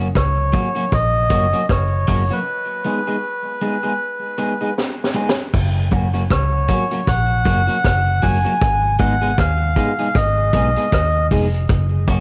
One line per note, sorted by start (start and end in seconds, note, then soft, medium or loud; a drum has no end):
0.00 0.12 F#1 loud
0.15 0.51 C#2 medium
0.15 0.96 C#5 medium
0.15 kick loud
0.15 cross-stick loud
0.15 closed hi-hat medium
0.53 0.67 F#3 medium
0.53 0.68 A#3 medium
0.53 0.68 C#4 medium
0.53 0.68 F#4 medium
0.53 kick medium
0.53 closed hi-hat medium
0.75 0.84 F#3 medium
0.75 0.84 A#3 medium
0.75 0.84 C#4 medium
0.75 0.84 F#4 medium
0.75 closed hi-hat soft
0.92 1.28 A#1 medium
0.92 1.66 D#5 loud
0.92 kick loud
0.92 closed hi-hat medium
1.30 1.52 F#1 medium
1.30 1.45 F#3 medium
1.30 1.45 A#3 medium
1.30 1.45 C#4 medium
1.30 1.45 F#4 medium
1.30 kick medium
1.30 closed hi-hat medium
1.53 1.62 F#3 medium
1.53 1.61 A#3 medium
1.53 1.61 C#4 medium
1.53 1.61 F#4 medium
1.53 closed hi-hat medium
1.69 2.05 F#1 medium
1.69 2.33 C#5 medium
1.69 kick loud
1.69 cross-stick loud
1.69 closed hi-hat medium
2.07 2.29 F#1 medium
2.07 2.22 F#3 medium
2.07 2.22 A#3 medium
2.07 2.22 C#4 medium
2.07 2.22 F#4 medium
2.07 kick medium
2.07 open hi-hat medium
2.30 2.39 F#3 soft
2.30 2.38 A#3 medium
2.30 2.38 C#4 soft
2.30 2.38 F#4 medium
2.30 4.74 B4 medium
2.30 closed hi-hat medium
2.85 2.99 G#3 medium
2.85 2.99 B3 medium
2.85 2.99 D#4 medium
2.85 2.99 G#4 medium
3.07 3.15 G#3 medium
3.07 3.15 B3 medium
3.07 3.15 D#4 medium
3.07 3.15 G#4 medium
3.61 3.76 G#3 medium
3.61 3.76 B3 medium
3.61 3.76 D#4 medium
3.61 3.76 G#4 medium
3.83 3.92 G#3 medium
3.83 3.92 B3 medium
3.83 3.92 D#4 medium
3.83 3.91 G#4 medium
4.38 4.52 G#3 medium
4.38 4.53 B3 medium
4.38 4.53 D#4 medium
4.38 4.53 G#4 medium
4.61 4.69 G#3 soft
4.61 4.69 B3 medium
4.61 4.69 D#4 medium
4.61 4.69 G#4 medium
4.78 snare medium
5.04 snare medium
5.14 5.29 G#3 medium
5.14 5.29 B3 medium
5.14 5.29 D#4 medium
5.14 5.29 G#4 medium
5.29 snare loud
5.54 6.27 F#1 loud
5.54 kick loud
5.54 crash loud
5.91 6.06 F#3 medium
5.91 6.06 A#3 medium
5.91 6.06 C#4 medium
5.91 6.07 F#4 medium
5.91 kick loud
5.91 closed hi-hat medium
6.14 6.23 F#3 soft
6.14 6.22 A#3 soft
6.14 6.22 C#4 medium
6.14 6.22 F#4 medium
6.14 closed hi-hat soft
6.30 6.67 C#2 medium
6.30 7.10 C#5 medium
6.30 kick loud
6.30 cross-stick loud
6.30 closed hi-hat medium
6.68 6.83 F#3 medium
6.68 6.83 A#3 medium
6.68 6.83 C#4 medium
6.68 6.83 F#4 medium
6.68 kick medium
6.68 closed hi-hat medium
6.91 7.00 F#3 soft
6.91 7.00 A#3 soft
6.91 6.99 C#4 medium
6.91 6.99 F#4 medium
6.91 closed hi-hat medium
7.07 7.44 A#1 medium
7.07 8.27 F#5 loud
7.07 kick loud
7.07 closed hi-hat medium
7.45 7.67 F#1 medium
7.45 7.60 F#3 medium
7.45 7.60 A#3 medium
7.45 7.60 C#4 medium
7.45 7.60 F#4 loud
7.45 kick medium
7.45 closed hi-hat medium
7.67 7.76 F#3 soft
7.67 7.76 A#3 medium
7.67 7.76 C#4 medium
7.67 7.76 F#4 medium
7.67 closed hi-hat medium
7.84 8.21 F#1 medium
7.84 kick loud
7.84 cross-stick loud
7.84 closed hi-hat loud
8.22 8.44 F#1 medium
8.22 8.37 F#3 medium
8.22 8.37 A#3 medium
8.22 8.37 C#4 medium
8.22 8.37 F#4 medium
8.22 8.96 G#5 loud
8.22 kick medium
8.22 open hi-hat medium
8.45 8.53 F#3 medium
8.45 8.53 A#3 medium
8.45 8.53 C#4 medium
8.45 8.53 F#4 medium
8.45 closed hi-hat medium
8.61 9.35 G#1 loud
8.61 kick loud
8.61 closed hi-hat medium
8.99 9.14 G#3 medium
8.99 9.14 B3 medium
8.99 9.14 D#4 loud
8.99 9.14 G#4 medium
8.99 9.39 F#5 loud
8.99 kick loud
8.99 closed hi-hat medium
9.22 9.30 G#3 medium
9.22 9.30 B3 medium
9.22 9.30 D#4 medium
9.22 9.30 G#4 medium
9.22 closed hi-hat soft
9.38 9.74 D#2 medium
9.38 10.17 F5 medium
9.38 kick loud
9.38 cross-stick loud
9.38 closed hi-hat medium
9.76 9.91 G#3 medium
9.76 9.91 B3 medium
9.76 9.91 D#4 medium
9.76 9.91 G#4 medium
9.76 kick medium
9.76 closed hi-hat medium
9.99 10.07 G#3 medium
9.99 10.07 B3 soft
9.99 10.07 D#4 medium
9.99 10.07 G#4 medium
9.99 closed hi-hat medium
10.15 10.51 G#1 loud
10.15 11.27 D#5 medium
10.15 kick loud
10.15 closed hi-hat medium
10.53 10.75 B1 loud
10.53 10.68 G#3 medium
10.53 10.68 B3 medium
10.53 10.68 D#4 medium
10.53 10.69 G#4 medium
10.53 kick medium
10.53 closed hi-hat medium
10.76 10.85 G#3 soft
10.76 10.85 B3 medium
10.76 10.85 D#4 medium
10.76 10.84 G#4 medium
10.76 closed hi-hat medium
10.92 11.28 D#2 loud
10.92 kick loud
10.92 cross-stick loud
10.92 closed hi-hat loud
11.31 11.67 F1 medium
11.31 11.45 G#3 medium
11.31 11.45 B3 medium
11.31 11.46 D#4 loud
11.31 11.46 G#4 loud
11.31 kick medium
11.31 open hi-hat medium
11.54 closed hi-hat medium
11.69 12.20 F#1 loud
11.69 kick loud
11.69 closed hi-hat loud
12.08 12.20 F#3 medium
12.08 12.20 A#3 medium
12.08 12.20 C#4 medium
12.08 12.20 F#4 loud
12.08 kick loud
12.08 closed hi-hat medium